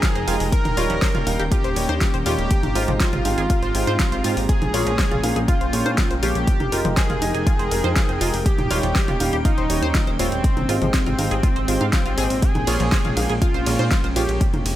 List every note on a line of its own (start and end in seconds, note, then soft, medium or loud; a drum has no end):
0.00 0.50 F3 medium
0.00 0.50 G#3 medium
0.00 0.50 D#4 medium
0.00 0.06 F4 medium
0.00 0.43 G#4 loud
0.00 0.50 A#4 medium
0.00 2.47 G5 medium
0.00 4.50 A#5 medium
0.00 kick loud
0.00 snare loud
0.00 closed hi-hat medium
0.15 0.25 F1 medium
0.15 0.18 C5 medium
0.15 closed hi-hat soft
0.28 0.38 F1 loud
0.28 0.51 G#3 medium
0.28 0.51 D#4 medium
0.28 0.35 F4 loud
0.28 0.51 G4 medium
0.28 0.51 A#4 medium
0.28 open hi-hat loud
0.40 0.50 F1 loud
0.40 open hi-hat medium
0.52 2.49 D#3 medium
0.52 2.49 A#3 medium
0.52 2.49 C#4 medium
0.52 1.42 A#4 loud
0.52 kick loud
0.52 closed hi-hat loud
0.65 0.75 D#1 medium
0.65 closed hi-hat soft
0.65 mid tom medium
0.65 high conga medium
0.77 0.88 D#1 loud
0.77 1.24 G3 loud
0.77 1.24 D#4 loud
0.77 0.85 F4 loud
0.77 1.24 C#5 loud
0.77 open hi-hat medium
0.90 1.00 D#1 medium
0.90 0.95 F3 medium
0.90 closed hi-hat soft
1.02 1.07 C5 medium
1.02 kick loud
1.02 snare loud
1.02 open hi-hat medium
1.15 1.25 D#1 medium
1.15 1.18 F4 medium
1.15 closed hi-hat soft
1.15 mid tom medium
1.27 1.37 D#1 loud
1.27 1.41 G3 medium
1.27 1.41 D#4 medium
1.27 1.41 F5 medium
1.27 open hi-hat loud
1.27 high conga medium
1.39 1.49 D#1 medium
1.39 1.42 G4 medium
1.39 closed hi-hat soft
1.52 1.57 F4 medium
1.52 2.16 G4 loud
1.52 kick loud
1.52 closed hi-hat loud
1.64 1.74 D#1 medium
1.64 1.69 C5 medium
1.64 closed hi-hat soft
1.76 1.87 D#1 loud
1.76 1.99 G3 medium
1.76 1.99 D#4 medium
1.76 1.99 C#5 medium
1.76 open hi-hat loud
1.89 1.99 D#2 medium
1.89 1.94 C5 loud
1.89 closed hi-hat soft
1.89 high conga medium
2.01 2.04 F4 medium
2.01 kick loud
2.01 snare loud
2.01 closed hi-hat medium
2.14 2.24 D#1 medium
2.14 2.17 C5 medium
2.14 closed hi-hat soft
2.26 2.36 D#1 loud
2.26 2.49 G#2 medium
2.26 2.49 G3 medium
2.26 2.49 D#4 medium
2.26 2.34 F4 loud
2.26 2.91 G4 loud
2.26 2.49 C#5 medium
2.26 open hi-hat loud
2.39 2.49 D#1 loud
2.39 closed hi-hat soft
2.51 6.43 G#3 medium
2.51 4.47 C4 medium
2.51 4.47 G4 medium
2.51 kick loud
2.51 closed hi-hat loud
2.63 2.73 G#1 medium
2.63 closed hi-hat soft
2.63 mid tom medium
2.63 high conga loud
2.75 2.86 G#1 loud
2.75 3.22 G#2 loud
2.75 3.22 G#3 loud
2.75 2.83 F4 loud
2.75 3.22 G4 medium
2.75 3.22 C5 loud
2.75 open hi-hat loud
2.88 2.98 G#1 medium
2.88 2.93 F3 medium
2.88 closed hi-hat soft
2.88 mid tom medium
3.00 4.39 F4 loud
3.00 3.06 C5 medium
3.00 kick loud
3.00 snare loud
3.00 closed hi-hat loud
3.13 3.23 G#1 medium
3.13 3.16 F4 medium
3.13 closed hi-hat soft
3.13 mid tom medium
3.25 3.36 G#1 loud
3.25 3.40 G#2 medium
3.25 3.40 G#3 medium
3.25 3.40 G4 medium
3.25 3.40 F5 medium
3.25 open hi-hat loud
3.25 high conga medium
3.38 3.48 G#1 medium
3.38 3.41 G#4 medium
3.38 closed hi-hat soft
3.50 3.55 F4 medium
3.50 kick loud
3.50 closed hi-hat loud
3.63 3.73 G#1 medium
3.63 3.68 C5 medium
3.63 closed hi-hat soft
3.75 3.85 G#1 loud
3.75 3.98 G#2 medium
3.75 3.98 G#3 medium
3.75 3.98 G4 medium
3.75 3.98 C5 medium
3.75 open hi-hat loud
3.87 3.97 G#2 medium
3.87 3.92 C5 loud
3.87 closed hi-hat soft
3.87 high conga loud
3.99 4.03 F4 medium
3.99 kick loud
3.99 snare loud
3.99 closed hi-hat loud
4.12 4.22 G#1 medium
4.12 4.15 C5 medium
4.12 closed hi-hat soft
4.24 4.35 G#2 loud
4.24 4.47 A#2 medium
4.24 4.47 G#3 medium
4.24 4.32 F4 loud
4.24 4.47 G4 medium
4.24 4.47 C5 medium
4.24 open hi-hat loud
4.37 4.47 G#1 medium
4.37 open hi-hat medium
4.49 6.45 A#3 medium
4.49 6.45 C#4 medium
4.49 5.39 G#4 loud
4.49 14.76 G5 medium
4.49 kick loud
4.49 closed hi-hat loud
4.62 4.72 A#1 medium
4.62 closed hi-hat soft
4.62 mid tom medium
4.62 high conga loud
4.74 4.84 A#1 loud
4.74 5.21 A#2 loud
4.74 5.21 A#3 medium
4.74 4.82 F4 loud
4.74 5.21 G#4 medium
4.74 5.21 C#5 loud
4.74 open hi-hat loud
4.86 4.96 A#1 medium
4.86 4.92 F3 medium
4.86 closed hi-hat soft
4.99 5.04 C5 medium
4.99 kick loud
4.99 snare loud
4.99 open hi-hat medium
5.11 5.21 A#1 medium
5.11 5.14 F4 medium
5.11 closed hi-hat soft
5.11 mid tom medium
5.23 5.34 A#1 medium
5.23 5.38 A#2 medium
5.23 5.38 A#3 medium
5.23 5.38 G#4 medium
5.23 5.38 F5 medium
5.23 open hi-hat loud
5.23 high conga medium
5.36 5.46 A#1 medium
5.36 5.39 G#4 medium
5.36 closed hi-hat soft
5.48 6.13 F4 loud
5.48 5.54 F4 medium
5.48 kick loud
5.48 closed hi-hat medium
5.61 5.71 A#1 medium
5.61 5.66 C5 medium
5.61 closed hi-hat soft
5.73 5.83 A#1 loud
5.73 5.96 A#2 medium
5.73 5.96 A#3 medium
5.73 5.96 G#4 medium
5.73 5.96 C#5 medium
5.73 open hi-hat loud
5.86 5.96 A#2 medium
5.86 5.91 C5 loud
5.86 closed hi-hat soft
5.86 high conga loud
5.98 6.01 F4 medium
5.98 kick loud
5.98 snare loud
5.98 closed hi-hat medium
6.11 6.21 A#1 medium
6.11 6.14 C5 medium
6.11 closed hi-hat soft
6.23 6.33 A#1 loud
6.23 6.46 F3 medium
6.23 6.46 A#3 medium
6.23 6.30 F4 loud
6.23 6.87 G4 loud
6.23 6.46 G#4 medium
6.23 6.46 C#5 medium
6.23 open hi-hat loud
6.35 6.45 A#1 medium
6.35 closed hi-hat soft
6.47 8.44 F3 medium
6.47 8.44 G#3 medium
6.47 8.44 D#4 medium
6.47 8.44 A#4 medium
6.47 10.40 G5 medium
6.47 kick loud
6.47 closed hi-hat loud
6.60 6.70 F1 medium
6.60 closed hi-hat soft
6.60 mid tom medium
6.60 high conga loud
6.72 6.83 F1 loud
6.72 7.19 G#3 loud
6.72 7.19 D#4 loud
6.72 6.80 F4 loud
6.72 7.19 G4 medium
6.72 7.19 A#4 loud
6.72 open hi-hat loud
6.85 6.95 F1 medium
6.85 6.90 F3 medium
6.85 closed hi-hat soft
6.85 mid tom medium
6.97 8.36 G#4 loud
6.97 7.02 C5 medium
6.97 kick loud
6.97 snare loud
6.97 closed hi-hat loud
7.10 7.20 F1 medium
7.10 7.13 F4 medium
7.10 closed hi-hat soft
7.10 mid tom loud
7.22 7.32 F1 loud
7.22 7.36 G#3 medium
7.22 7.36 D#4 medium
7.22 7.36 G4 medium
7.22 7.36 D#5 medium
7.22 open hi-hat loud
7.22 high conga medium
7.34 7.44 F1 medium
7.34 7.37 G#4 medium
7.34 closed hi-hat soft
7.47 7.52 F4 medium
7.47 kick loud
7.47 closed hi-hat medium
7.59 7.69 F1 medium
7.59 7.64 C5 medium
7.59 closed hi-hat soft
7.71 7.82 F1 loud
7.71 7.95 G#3 medium
7.71 7.94 D#4 medium
7.71 7.94 G4 medium
7.71 7.94 A#4 medium
7.71 open hi-hat loud
7.84 7.94 F2 medium
7.84 7.89 C5 loud
7.84 closed hi-hat soft
7.84 high conga medium
7.96 7.99 F4 medium
7.96 kick loud
7.96 snare loud
7.96 closed hi-hat medium
8.09 8.19 F1 medium
8.09 8.12 C5 medium
8.09 closed hi-hat soft
8.21 8.31 F1 loud
8.21 8.44 G#3 medium
8.21 8.44 D#4 medium
8.21 8.29 F4 loud
8.21 8.44 G4 medium
8.21 8.44 A#4 medium
8.21 open hi-hat loud
8.34 8.44 F1 medium
8.34 open hi-hat medium
8.46 10.42 D#3 medium
8.46 10.42 A#3 medium
8.46 10.42 C#4 medium
8.46 9.35 G4 loud
8.46 kick loud
8.46 closed hi-hat loud
8.59 8.68 D#1 medium
8.59 closed hi-hat soft
8.59 mid tom medium
8.59 high conga loud
8.71 8.81 D#1 loud
8.71 9.17 G3 loud
8.71 9.17 D#4 loud
8.71 8.78 F4 loud
8.71 9.17 C#5 loud
8.71 open hi-hat loud
8.83 8.93 D#1 loud
8.83 8.88 F3 medium
8.83 closed hi-hat soft
8.95 9.01 C5 medium
8.95 kick loud
8.95 snare loud
8.95 open hi-hat medium
9.08 9.18 D#1 medium
9.08 9.11 F4 medium
9.08 closed hi-hat soft
9.08 mid tom medium
9.20 9.31 D#1 medium
9.20 9.35 G3 medium
9.20 9.35 D#4 medium
9.20 9.35 F5 medium
9.20 open hi-hat loud
9.20 high conga medium
9.33 9.43 D#1 medium
9.33 9.36 G4 medium
9.33 closed hi-hat soft
9.45 10.10 D#4 loud
9.45 9.50 F4 medium
9.45 kick loud
9.45 closed hi-hat medium
9.58 9.68 D#1 medium
9.58 9.63 C5 medium
9.58 closed hi-hat soft
9.70 9.80 D#1 loud
9.70 9.93 G3 medium
9.70 9.93 D#4 medium
9.70 9.93 C#5 medium
9.70 open hi-hat loud
9.82 9.92 D#2 medium
9.82 9.87 C5 loud
9.82 closed hi-hat soft
9.82 high conga medium
9.95 9.98 F4 medium
9.95 kick loud
9.95 snare loud
9.95 closed hi-hat medium
10.07 10.17 D#1 medium
10.07 10.10 C5 medium
10.07 closed hi-hat soft
10.19 10.30 D#1 loud
10.19 10.42 G#2 medium
10.19 10.42 G3 medium
10.19 10.84 C4 loud
10.19 10.42 D#4 medium
10.19 10.27 F4 loud
10.19 10.42 C#5 medium
10.19 open hi-hat loud
10.32 10.42 D#1 medium
10.32 closed hi-hat soft
10.44 12.41 G#3 medium
10.44 12.40 C4 medium
10.44 12.40 G4 medium
10.44 kick loud
10.44 closed hi-hat medium
10.57 10.67 G#1 medium
10.57 closed hi-hat soft
10.57 mid tom medium
10.57 high conga loud
10.69 10.79 G#1 loud
10.69 11.16 G#2 loud
10.69 11.16 G#3 medium
10.69 10.77 F4 loud
10.69 11.16 G4 medium
10.69 11.16 C5 loud
10.69 open hi-hat loud
10.82 10.92 G#1 loud
10.82 10.87 F3 medium
10.82 closed hi-hat soft
10.82 mid tom medium
10.94 12.44 C4 loud
10.94 10.99 C5 medium
10.94 kick loud
10.94 snare loud
10.94 closed hi-hat loud
11.06 11.16 G#1 medium
11.06 11.09 F4 medium
11.06 closed hi-hat soft
11.06 mid tom medium
11.19 11.29 G#1 medium
11.19 11.33 G#2 medium
11.19 11.33 G#3 medium
11.19 11.33 G4 medium
11.19 11.33 F5 medium
11.19 open hi-hat loud
11.19 high conga medium
11.31 11.41 G#1 medium
11.31 11.34 G#4 medium
11.31 closed hi-hat soft
11.43 11.49 F4 medium
11.43 kick loud
11.43 closed hi-hat medium
11.56 11.66 G#1 medium
11.56 11.61 C5 medium
11.56 closed hi-hat soft
11.68 11.79 G#1 loud
11.68 11.91 G#2 medium
11.68 11.91 G#3 medium
11.68 11.73 F4 medium
11.68 11.91 G4 medium
11.68 11.91 C5 medium
11.68 open hi-hat loud
11.81 11.91 G#2 medium
11.81 11.86 F5 medium
11.81 closed hi-hat soft
11.81 high conga medium
11.93 12.01 F4 medium
11.93 kick loud
11.93 snare loud
11.93 closed hi-hat medium
12.06 12.16 G#1 medium
12.06 12.13 F4 medium
12.06 closed hi-hat soft
12.18 12.28 G#1 loud
12.18 12.41 A#2 medium
12.18 12.41 G#3 medium
12.18 12.41 G4 medium
12.18 12.25 G#4 loud
12.18 12.41 C5 medium
12.18 open hi-hat loud
12.30 12.40 G#1 medium
12.30 open hi-hat medium
12.42 14.39 G#3 medium
12.42 14.39 A#3 medium
12.42 14.39 C#4 medium
12.42 13.32 G#4 loud
12.42 kick loud
12.42 closed hi-hat medium
12.55 12.65 A#1 medium
12.55 closed hi-hat soft
12.55 mid tom medium
12.55 high conga medium
12.67 12.78 A#1 loud
12.67 13.14 A#2 loud
12.67 13.14 A#3 loud
12.67 12.75 F4 loud
12.67 13.14 G#4 medium
12.67 13.14 C#5 loud
12.67 open hi-hat loud
12.67 ride medium
12.80 12.90 A#1 medium
12.80 12.85 F3 medium
12.80 closed hi-hat soft
12.92 12.97 C5 medium
12.92 kick loud
12.92 snare loud
12.92 open hi-hat medium
13.05 13.15 A#1 medium
13.05 13.08 F4 medium
13.05 closed hi-hat soft
13.05 mid tom medium
13.17 13.27 A#1 loud
13.17 13.31 A#2 medium
13.17 13.31 A#3 medium
13.17 13.31 G#4 medium
13.17 13.31 F5 medium
13.17 open hi-hat loud
13.17 ride medium
13.17 high conga medium
13.30 13.40 A#1 medium
13.30 13.33 G#4 medium
13.30 closed hi-hat soft
13.42 13.47 F4 medium
13.42 14.06 F4 medium
13.42 kick loud
13.42 closed hi-hat loud
13.54 13.64 A#1 medium
13.54 13.59 C5 medium
13.54 closed hi-hat soft
13.66 13.77 A#1 loud
13.66 13.90 A#2 medium
13.66 13.90 A#3 medium
13.66 13.90 G#4 medium
13.66 13.90 C#5 medium
13.66 open hi-hat loud
13.66 ride medium
13.79 13.89 A#2 medium
13.79 13.84 C5 loud
13.79 closed hi-hat soft
13.79 high conga medium
13.91 13.94 F4 medium
13.91 kick loud
13.91 snare loud
13.91 closed hi-hat medium
14.04 14.14 A#1 medium
14.04 14.07 C5 medium
14.04 closed hi-hat soft
14.16 14.26 A#1 loud
14.16 14.39 F3 medium
14.16 14.39 A#3 medium
14.16 14.24 F4 loud
14.16 14.41 G4 loud
14.16 14.39 G#4 medium
14.16 14.39 C#5 medium
14.16 open hi-hat loud
14.16 ride medium
14.29 14.39 A#1 medium
14.29 closed hi-hat soft
14.41 14.76 F3 medium
14.41 14.76 D#4 medium
14.41 14.76 G4 medium
14.41 14.76 G#4 medium
14.41 14.76 A#4 medium
14.41 kick loud
14.41 closed hi-hat medium
14.54 14.63 F1 medium
14.54 closed hi-hat soft
14.54 mid tom medium
14.54 high conga medium
14.66 14.76 F1 loud
14.66 open hi-hat loud
14.66 ride medium